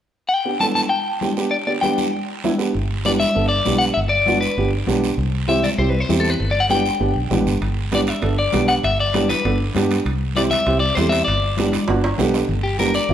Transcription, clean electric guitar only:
0, 0, Header, 1, 2, 480
1, 0, Start_track
1, 0, Key_signature, 1, "major"
1, 0, Tempo, 304723
1, 477, Time_signature, 4, 2, 24, 8
1, 20697, End_track
2, 0, Start_track
2, 0, Title_t, "Clean electric guitar"
2, 0, Program_c, 0, 27
2, 451, Note_on_c, 0, 79, 82
2, 947, Note_off_c, 0, 79, 0
2, 953, Note_on_c, 0, 81, 81
2, 1032, Note_off_c, 0, 81, 0
2, 1187, Note_on_c, 0, 81, 81
2, 1265, Note_off_c, 0, 81, 0
2, 1409, Note_on_c, 0, 79, 78
2, 2323, Note_off_c, 0, 79, 0
2, 2376, Note_on_c, 0, 74, 73
2, 2455, Note_off_c, 0, 74, 0
2, 2632, Note_on_c, 0, 74, 69
2, 2711, Note_off_c, 0, 74, 0
2, 2857, Note_on_c, 0, 79, 74
2, 3539, Note_off_c, 0, 79, 0
2, 4818, Note_on_c, 0, 74, 79
2, 4897, Note_off_c, 0, 74, 0
2, 5034, Note_on_c, 0, 76, 94
2, 5483, Note_off_c, 0, 76, 0
2, 5490, Note_on_c, 0, 74, 78
2, 5955, Note_off_c, 0, 74, 0
2, 5961, Note_on_c, 0, 78, 95
2, 6040, Note_off_c, 0, 78, 0
2, 6203, Note_on_c, 0, 76, 92
2, 6282, Note_off_c, 0, 76, 0
2, 6447, Note_on_c, 0, 74, 93
2, 6934, Note_off_c, 0, 74, 0
2, 6940, Note_on_c, 0, 71, 68
2, 7399, Note_off_c, 0, 71, 0
2, 8643, Note_on_c, 0, 76, 83
2, 8878, Note_on_c, 0, 74, 79
2, 8892, Note_off_c, 0, 76, 0
2, 8957, Note_off_c, 0, 74, 0
2, 9112, Note_on_c, 0, 72, 85
2, 9285, Note_off_c, 0, 72, 0
2, 9285, Note_on_c, 0, 71, 75
2, 9458, Note_off_c, 0, 71, 0
2, 9458, Note_on_c, 0, 72, 75
2, 9767, Note_on_c, 0, 69, 69
2, 9771, Note_off_c, 0, 72, 0
2, 9920, Note_off_c, 0, 69, 0
2, 9920, Note_on_c, 0, 71, 84
2, 10252, Note_off_c, 0, 71, 0
2, 10257, Note_on_c, 0, 74, 90
2, 10399, Note_on_c, 0, 78, 83
2, 10415, Note_off_c, 0, 74, 0
2, 10472, Note_off_c, 0, 78, 0
2, 10565, Note_on_c, 0, 79, 91
2, 11460, Note_off_c, 0, 79, 0
2, 12520, Note_on_c, 0, 74, 82
2, 12598, Note_off_c, 0, 74, 0
2, 12732, Note_on_c, 0, 76, 84
2, 13204, Note_off_c, 0, 76, 0
2, 13211, Note_on_c, 0, 74, 89
2, 13671, Note_off_c, 0, 74, 0
2, 13678, Note_on_c, 0, 78, 106
2, 13757, Note_off_c, 0, 78, 0
2, 13931, Note_on_c, 0, 76, 94
2, 14172, Note_off_c, 0, 76, 0
2, 14182, Note_on_c, 0, 74, 83
2, 14617, Note_off_c, 0, 74, 0
2, 14639, Note_on_c, 0, 71, 71
2, 15085, Note_off_c, 0, 71, 0
2, 16328, Note_on_c, 0, 74, 94
2, 16407, Note_off_c, 0, 74, 0
2, 16551, Note_on_c, 0, 76, 95
2, 17005, Note_off_c, 0, 76, 0
2, 17011, Note_on_c, 0, 74, 85
2, 17245, Note_off_c, 0, 74, 0
2, 17250, Note_on_c, 0, 72, 85
2, 17475, Note_on_c, 0, 76, 97
2, 17510, Note_off_c, 0, 72, 0
2, 17707, Note_off_c, 0, 76, 0
2, 17713, Note_on_c, 0, 74, 79
2, 19109, Note_off_c, 0, 74, 0
2, 19900, Note_on_c, 0, 67, 78
2, 20139, Note_off_c, 0, 67, 0
2, 20153, Note_on_c, 0, 70, 74
2, 20385, Note_off_c, 0, 70, 0
2, 20395, Note_on_c, 0, 74, 80
2, 20697, Note_off_c, 0, 74, 0
2, 20697, End_track
0, 0, End_of_file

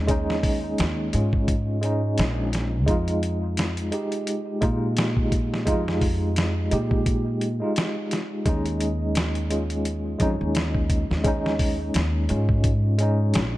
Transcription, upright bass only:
0, 0, Header, 1, 2, 480
1, 0, Start_track
1, 0, Tempo, 697674
1, 60, Time_signature, 4, 2, 24, 8
1, 9340, End_track
2, 0, Start_track
2, 0, Title_t, "Upright bass"
2, 0, Program_c, 0, 32
2, 0, Note_on_c, 0, 39, 76
2, 524, Note_off_c, 0, 39, 0
2, 547, Note_on_c, 0, 39, 89
2, 758, Note_off_c, 0, 39, 0
2, 784, Note_on_c, 0, 44, 93
2, 1506, Note_on_c, 0, 34, 98
2, 1516, Note_off_c, 0, 44, 0
2, 1983, Note_off_c, 0, 34, 0
2, 1983, Note_on_c, 0, 41, 90
2, 2681, Note_off_c, 0, 41, 0
2, 3181, Note_on_c, 0, 46, 95
2, 3880, Note_off_c, 0, 46, 0
2, 3902, Note_on_c, 0, 41, 98
2, 4601, Note_off_c, 0, 41, 0
2, 4626, Note_on_c, 0, 46, 96
2, 5213, Note_off_c, 0, 46, 0
2, 5822, Note_on_c, 0, 39, 92
2, 7001, Note_off_c, 0, 39, 0
2, 7021, Note_on_c, 0, 41, 97
2, 7140, Note_off_c, 0, 41, 0
2, 7161, Note_on_c, 0, 39, 85
2, 7612, Note_off_c, 0, 39, 0
2, 7641, Note_on_c, 0, 39, 77
2, 8203, Note_off_c, 0, 39, 0
2, 8224, Note_on_c, 0, 39, 89
2, 8437, Note_off_c, 0, 39, 0
2, 8463, Note_on_c, 0, 44, 94
2, 9183, Note_on_c, 0, 34, 100
2, 9193, Note_off_c, 0, 44, 0
2, 9340, Note_off_c, 0, 34, 0
2, 9340, End_track
0, 0, End_of_file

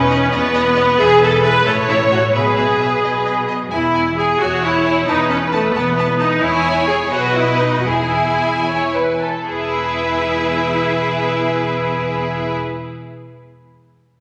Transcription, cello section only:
0, 0, Header, 1, 2, 480
1, 0, Start_track
1, 0, Key_signature, 4, "major"
1, 0, Tempo, 444444
1, 1068, Time_signature, 6, 3, 24, 8
1, 2033, Tempo, 455581
1, 7793, Tempo, 520833
1, 9233, Tempo, 556070
1, 13799, End_track
2, 0, Start_track
2, 0, Title_t, "Cello section"
2, 0, Program_c, 0, 48
2, 0, Note_on_c, 0, 40, 67
2, 266, Note_off_c, 0, 40, 0
2, 349, Note_on_c, 0, 40, 72
2, 982, Note_off_c, 0, 40, 0
2, 1071, Note_on_c, 0, 40, 80
2, 1704, Note_off_c, 0, 40, 0
2, 1796, Note_on_c, 0, 45, 65
2, 2435, Note_off_c, 0, 45, 0
2, 2524, Note_on_c, 0, 47, 57
2, 3161, Note_off_c, 0, 47, 0
2, 3249, Note_on_c, 0, 47, 48
2, 3887, Note_off_c, 0, 47, 0
2, 3970, Note_on_c, 0, 40, 62
2, 4607, Note_off_c, 0, 40, 0
2, 4687, Note_on_c, 0, 40, 50
2, 5316, Note_off_c, 0, 40, 0
2, 5396, Note_on_c, 0, 40, 60
2, 6017, Note_off_c, 0, 40, 0
2, 6098, Note_on_c, 0, 40, 62
2, 6725, Note_off_c, 0, 40, 0
2, 6813, Note_on_c, 0, 40, 55
2, 7501, Note_off_c, 0, 40, 0
2, 7539, Note_on_c, 0, 47, 57
2, 8238, Note_off_c, 0, 47, 0
2, 8255, Note_on_c, 0, 40, 49
2, 9506, Note_off_c, 0, 40, 0
2, 9722, Note_on_c, 0, 40, 49
2, 12372, Note_off_c, 0, 40, 0
2, 13799, End_track
0, 0, End_of_file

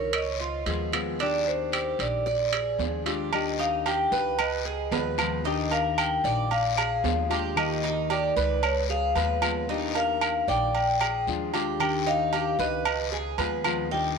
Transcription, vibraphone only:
0, 0, Header, 1, 2, 480
1, 0, Start_track
1, 0, Key_signature, -3, "major"
1, 0, Tempo, 530035
1, 1086, Time_signature, 4, 2, 24, 8
1, 12841, End_track
2, 0, Start_track
2, 0, Title_t, "Vibraphone"
2, 0, Program_c, 0, 11
2, 0, Note_on_c, 0, 70, 82
2, 136, Note_off_c, 0, 70, 0
2, 139, Note_on_c, 0, 75, 94
2, 817, Note_off_c, 0, 75, 0
2, 1092, Note_on_c, 0, 74, 105
2, 1313, Note_off_c, 0, 74, 0
2, 1335, Note_on_c, 0, 72, 99
2, 1779, Note_off_c, 0, 72, 0
2, 1816, Note_on_c, 0, 74, 92
2, 2498, Note_off_c, 0, 74, 0
2, 3019, Note_on_c, 0, 75, 90
2, 3239, Note_off_c, 0, 75, 0
2, 3254, Note_on_c, 0, 77, 87
2, 3498, Note_on_c, 0, 79, 104
2, 3501, Note_off_c, 0, 77, 0
2, 3943, Note_off_c, 0, 79, 0
2, 3978, Note_on_c, 0, 75, 83
2, 4661, Note_off_c, 0, 75, 0
2, 4937, Note_on_c, 0, 75, 94
2, 5180, Note_on_c, 0, 77, 98
2, 5183, Note_off_c, 0, 75, 0
2, 5416, Note_on_c, 0, 79, 103
2, 5425, Note_off_c, 0, 77, 0
2, 5862, Note_off_c, 0, 79, 0
2, 5900, Note_on_c, 0, 77, 95
2, 6581, Note_off_c, 0, 77, 0
2, 6867, Note_on_c, 0, 75, 99
2, 7343, Note_on_c, 0, 74, 97
2, 7355, Note_off_c, 0, 75, 0
2, 7785, Note_off_c, 0, 74, 0
2, 7823, Note_on_c, 0, 73, 92
2, 7928, Note_off_c, 0, 73, 0
2, 8063, Note_on_c, 0, 77, 105
2, 8504, Note_off_c, 0, 77, 0
2, 8787, Note_on_c, 0, 75, 84
2, 9019, Note_on_c, 0, 77, 97
2, 9026, Note_off_c, 0, 75, 0
2, 9461, Note_off_c, 0, 77, 0
2, 9502, Note_on_c, 0, 79, 102
2, 10178, Note_off_c, 0, 79, 0
2, 10696, Note_on_c, 0, 79, 99
2, 10934, Note_on_c, 0, 77, 86
2, 10937, Note_off_c, 0, 79, 0
2, 11411, Note_on_c, 0, 75, 92
2, 11422, Note_off_c, 0, 77, 0
2, 11896, Note_on_c, 0, 80, 107
2, 11900, Note_off_c, 0, 75, 0
2, 12334, Note_off_c, 0, 80, 0
2, 12606, Note_on_c, 0, 79, 102
2, 12712, Note_off_c, 0, 79, 0
2, 12841, End_track
0, 0, End_of_file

